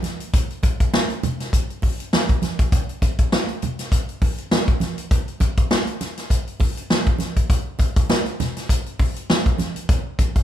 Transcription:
0.03 snare soft
0.03 closed hi-hat medium
0.03 high conga medium
0.20 closed hi-hat medium
0.33 kick loud
0.33 closed hi-hat medium
0.33 muted conga soft
0.50 closed hi-hat soft
0.63 kick loud
0.63 closed hi-hat medium
0.63 muted conga medium
0.80 kick loud
0.80 closed hi-hat medium
0.94 snare loud
0.94 high conga medium
1.10 closed hi-hat soft
1.23 closed hi-hat medium
1.23 muted conga medium
1.23 low conga medium
1.40 snare soft
1.40 closed hi-hat medium
1.53 kick loud
1.53 closed hi-hat loud
1.70 closed hi-hat soft
1.82 kick medium
1.82 open hi-hat medium
1.82 muted conga soft
2.00 closed hi-hat medium
2.13 snare loud
2.13 high conga medium
2.29 kick loud
2.29 closed hi-hat soft
2.42 snare soft
2.42 closed hi-hat medium
2.42 high conga medium
2.59 kick medium
2.59 closed hi-hat medium
2.72 kick loud
2.72 closed hi-hat medium
2.89 closed hi-hat soft
3.02 kick medium
3.02 closed hi-hat medium
3.02 muted conga medium
3.19 kick loud
3.19 closed hi-hat medium
3.32 snare loud
3.32 high conga medium
3.48 closed hi-hat soft
3.62 closed hi-hat medium
3.62 muted conga medium
3.62 low conga medium
3.79 snare soft
3.79 closed hi-hat medium
3.92 kick loud
3.92 closed hi-hat loud
4.09 closed hi-hat soft
4.22 kick medium
4.22 open hi-hat medium
4.22 muted conga soft
4.38 closed hi-hat medium
4.51 snare loud
4.51 high conga medium
4.68 kick loud
4.68 closed hi-hat soft
4.80 snare soft
4.80 closed hi-hat medium
4.80 high conga medium
4.98 closed hi-hat medium
5.11 kick loud
5.11 closed hi-hat medium
5.28 closed hi-hat soft
5.40 kick medium
5.40 closed hi-hat medium
5.40 muted conga medium
5.57 kick loud
5.57 closed hi-hat medium
5.71 snare loud
5.71 high conga medium
5.87 closed hi-hat soft
6.01 snare soft
6.01 closed hi-hat medium
6.01 muted conga medium
6.17 snare soft
6.17 closed hi-hat medium
6.30 kick loud
6.30 closed hi-hat loud
6.47 closed hi-hat soft
6.60 kick medium
6.60 open hi-hat medium
6.60 muted conga soft
6.77 closed hi-hat medium
6.90 snare loud
6.90 high conga medium
7.07 kick medium
7.07 closed hi-hat soft
7.18 snare soft
7.18 closed hi-hat medium
7.18 high conga medium
7.36 kick medium
7.36 closed hi-hat medium
7.50 kick loud
7.50 closed hi-hat medium
7.79 kick loud
7.79 closed hi-hat medium
7.79 muted conga medium
7.96 kick loud
7.96 closed hi-hat medium
8.10 snare loud
8.10 high conga medium
8.26 closed hi-hat soft
8.40 snare soft
8.40 closed hi-hat medium
8.40 muted conga medium
8.40 low conga medium
8.57 snare soft
8.57 closed hi-hat medium
8.69 kick medium
8.69 closed hi-hat loud
8.86 closed hi-hat soft
8.99 kick medium
8.99 open hi-hat medium
8.99 muted conga medium
9.16 closed hi-hat medium
9.30 snare loud
9.30 high conga medium
9.46 kick loud
9.46 closed hi-hat soft
9.59 snare soft
9.59 closed hi-hat medium
9.59 high conga medium
9.76 closed hi-hat medium
9.89 kick loud
9.89 closed hi-hat medium
9.89 muted conga soft
10.19 kick medium
10.19 closed hi-hat medium
10.19 muted conga medium
10.36 kick medium
10.36 closed hi-hat medium

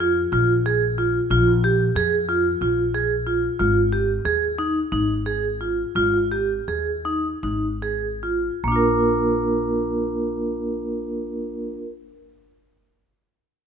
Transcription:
0.00 0.25 F2 medium
0.00 0.19 F4 medium
0.32 1.18 A#1 medium
0.32 0.51 F4 medium
0.66 0.84 G#4 medium
0.98 1.17 F4 medium
1.30 1.88 A#1 medium
1.30 1.49 F4 medium
1.64 1.82 G4 medium
1.95 2.53 F2 medium
1.95 2.15 G#4 medium
2.29 2.47 F4 medium
2.61 3.47 A#1 medium
2.61 2.80 F4 medium
2.95 3.13 G#4 medium
3.27 3.45 F4 medium
3.60 4.17 G#1 medium
3.60 3.78 F4 medium
3.92 4.11 G4 soft
4.25 4.84 D#2 medium
4.25 4.44 G#4 medium
4.58 4.78 D#4 medium
4.92 5.83 G#1 medium
4.92 5.12 D#4 medium
5.26 5.46 G#4 medium
5.61 5.81 F4 soft
5.95 6.59 G#1 medium
5.95 6.16 F4 medium
6.32 6.52 G4 medium
6.68 7.34 D#2 medium
6.68 6.89 G#4 medium
7.05 7.27 D#4 soft
7.43 8.48 G#1 medium
7.43 7.65 D#4 medium
7.82 8.05 G#4 soft
8.23 8.46 F4 soft
8.64 11.74 A#1 medium
8.64 11.74 A#3 soft
8.68 11.78 D4 soft
8.72 11.82 F4 soft
8.72 11.86 A#4 soft

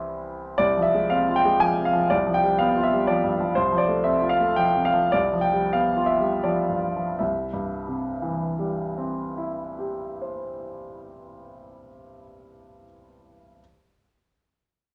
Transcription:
0.00 0.52 C2 soft
0.00 0.53 E3 soft
0.00 0.53 G3 soft
0.00 0.54 C4 soft
0.00 0.60 E4 soft
0.00 0.60 G4 soft
0.00 0.60 C5 medium
0.58 2.07 C2 soft
0.58 0.85 D5 medium
0.77 1.04 F3 soft
0.82 1.09 E5 medium
0.95 1.21 G#3 soft
1.10 1.38 C4 soft
1.10 1.35 F5 medium
1.28 1.55 F4 soft
1.36 1.61 G5 medium
1.45 1.71 G#3 soft
1.60 1.88 F3 soft
1.60 1.85 G#5 medium
1.78 2.04 C3 soft
1.85 2.10 F5 medium
1.93 2.10 F3 soft
2.10 3.52 C2 soft
2.10 2.35 D5 medium
2.27 2.53 F3 soft
2.34 2.59 G5 medium
2.44 2.69 G3 soft
2.59 2.85 B3 soft
2.59 2.83 F5 medium
2.76 3.02 F4 soft
2.83 3.07 E5 medium
2.94 3.18 G3 soft
3.07 3.34 F3 soft
3.07 3.55 D5 medium
3.24 3.49 G2 soft
3.40 3.56 F3 soft
3.55 5.10 C2 soft
3.55 3.80 C5 medium
3.72 3.99 F3 soft
3.78 4.04 D5 medium
3.88 4.15 A3 soft
4.04 4.33 C4 soft
4.04 4.31 E5 medium
4.22 4.51 F4 soft
4.29 4.57 F5 medium
4.40 4.69 A3 soft
4.56 4.87 F3 soft
4.56 4.85 G5 medium
4.75 5.05 C3 soft
4.85 5.13 F5 medium
4.94 5.13 F3 soft
5.12 7.16 C2 soft
5.12 5.42 D5 medium
5.33 5.65 F3 soft
5.41 5.72 G5 medium
5.53 5.86 G3 soft
5.73 6.09 B3 soft
5.73 6.06 F5 medium
5.97 6.34 F4 soft
6.06 6.43 E5 medium
6.20 6.59 G3 soft
6.43 6.86 F3 soft
6.43 7.21 D5 soft
6.69 7.11 G2 soft
6.97 7.21 F3 soft
7.19 11.20 C2 soft
7.19 11.19 E5 soft
7.53 11.54 G2 soft
7.88 11.88 C3 soft
8.22 12.23 E3 soft
8.59 12.60 G3 soft
8.98 12.84 C4 soft
9.38 12.84 E4 soft
9.79 12.84 G4 soft
10.22 12.84 C5 soft

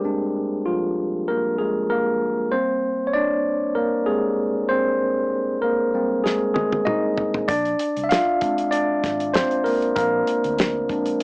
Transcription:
0.00 0.63 G3 medium
0.00 0.04 G#3 medium
0.00 1.60 G#3 medium
0.00 1.30 A#3 medium
0.00 0.05 D4 medium
0.00 0.69 G4 medium
0.00 1.58 G#4 medium
0.00 2.54 A4 medium
0.00 1.28 A#4 medium
0.00 2.54 D5 medium
0.04 2.49 C4 medium
0.04 2.49 D4 medium
0.66 1.25 F3 medium
0.66 1.30 F4 medium
1.28 1.58 A#3 medium
1.28 1.57 A#4 medium
1.58 1.89 G#3 medium
1.58 1.91 G#4 medium
1.90 2.49 A#3 medium
1.90 2.54 A#4 medium
2.52 2.95 G3 medium
2.52 2.95 A#3 soft
2.52 3.05 C4 medium
2.52 3.04 C5 medium
3.07 3.14 C#5 medium
3.14 3.73 D4 medium
3.14 3.78 D5 medium
3.75 4.06 A#3 medium
3.75 4.08 A#4 medium
4.06 4.66 G#3 medium
4.06 4.36 A#3 soft
4.06 4.36 C4 medium
4.06 4.35 G4 soft
4.06 4.71 G#4 medium
4.69 5.59 C4 medium
4.69 5.65 C5 medium
5.62 5.93 A#3 medium
5.62 6.26 A#4 medium
5.94 6.36 G3 medium
5.94 6.36 A#3 medium
5.94 6.36 C4 medium
6.24 6.54 G#3 medium
6.24 6.53 G#4 medium
6.24 snare medium
6.54 6.85 G#3 medium
6.54 6.87 G#4 medium
6.54 high tom medium
6.73 high tom medium
6.85 7.45 D#4 medium
6.85 7.50 D#5 loud
6.85 mid tom medium
7.18 floor tom medium
7.34 floor tom medium
7.48 7.74 A#1 loud
7.48 8.01 D4 medium
7.48 8.05 D5 loud
7.48 kick loud
7.48 closed hi-hat medium
7.65 closed hi-hat soft
7.79 closed hi-hat medium
7.96 8.08 C2 medium
7.96 closed hi-hat soft
8.04 8.10 E5 medium
8.09 8.69 F4 medium
8.09 8.74 F5 loud
8.09 snare loud
8.09 closed hi-hat medium
8.41 9.31 G#3 medium
8.41 9.31 C4 medium
8.41 8.72 D4 medium
8.41 kick medium
8.41 closed hi-hat medium
8.58 closed hi-hat medium
8.71 9.31 D4 medium
8.71 9.36 D5 medium
8.71 closed hi-hat medium
9.04 9.43 G#1 medium
9.04 kick medium
9.04 snare soft
9.04 closed hi-hat medium
9.20 closed hi-hat medium
9.34 9.64 C4 medium
9.34 9.66 C5 loud
9.34 snare loud
9.34 closed hi-hat medium
9.51 closed hi-hat soft
9.64 9.95 A#3 medium
9.64 9.93 A#4 medium
9.64 open hi-hat medium
9.82 closed hi-hat soft
9.96 10.22 A#1 loud
9.96 10.86 A#3 medium
9.96 10.85 A#4 medium
9.96 kick loud
9.96 closed hi-hat medium
10.27 closed hi-hat medium
10.44 10.90 D2 medium
10.44 closed hi-hat soft
10.58 snare loud
10.58 closed hi-hat medium
10.89 11.23 A#1 medium
10.89 11.23 G#3 medium
10.89 11.23 C4 medium
10.89 11.23 D4 medium
10.89 kick medium
10.89 closed hi-hat medium
11.06 closed hi-hat medium

